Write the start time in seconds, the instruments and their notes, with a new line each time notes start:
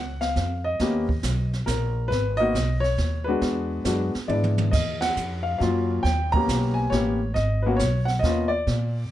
Already playing: upright bass C#2, grand piano F#5
0.21 grand piano F5, snare
0.36 upright bass F2, kick, snare
0.64 grand piano D#5
0.80 upright bass D#2, grand piano A#3 B3 C#4 G4, brush sweep, kick, snare
1.09 kick
1.23 upright bass B1, kick, snare, hi-hat pedal
1.53 snare
1.66 upright bass A#1, grand piano A#4, kick, snare, hi-hat pedal
2.08 upright bass G#1, grand piano B4, brush sweep, kick, snare
2.37 grand piano A#3 B3 D#4 D#5
2.41 grand piano F#4
2.54 upright bass B1, kick, snare, hi-hat pedal
2.80 grand piano C#5, snare
2.98 upright bass D#2, kick, snare
3.24 grand piano G#3 B3 D4 B4
3.29 grand piano F#4
3.41 upright bass E2, brush sweep, kick, snare
3.84 upright bass F#2, grand piano G#3 B3 D4 F#4, kick, snare, hi-hat pedal
4.15 muted upright bass stroke, snare
4.27 upright bass G#2, grand piano G#3 B3 D4 E4 D5, high tom
4.44 high tom
4.58 high tom
4.71 upright bass D#2, grand piano D#5, brush sweep, kick, snare, crash
5.01 grand piano F#5, snare, ride
5.16 upright bass F2, hi-hat pedal
5.43 grand piano F5
5.58 upright bass F#2, grand piano F#3 A#3 C#4 F4 F5, kick, snare
6.03 upright bass D#2, grand piano G5, brush sweep, kick, snare
6.32 grand piano A#3 B3 C#4 A#5, kick
6.37 grand piano G4
6.48 upright bass B1, kick, snare, hi-hat pedal
6.74 grand piano G#5
6.90 upright bass A1, grand piano A#3 B3 C#4 G4 C#5, kick, snare
7.34 upright bass G#1, grand piano D#5, brush sweep, kick, snare
7.62 grand piano A#3 B3 B4
7.67 grand piano C#4 F#4
7.77 upright bass B1, grand piano C#5, kick, snare, hi-hat pedal
8.05 grand piano F#5, snare
8.19 upright bass D#2, grand piano D#5, kick
8.23 grand piano A#3 B3 C#4 F4, snare
8.48 grand piano D5
8.67 upright bass A#2, brush sweep, kick, snare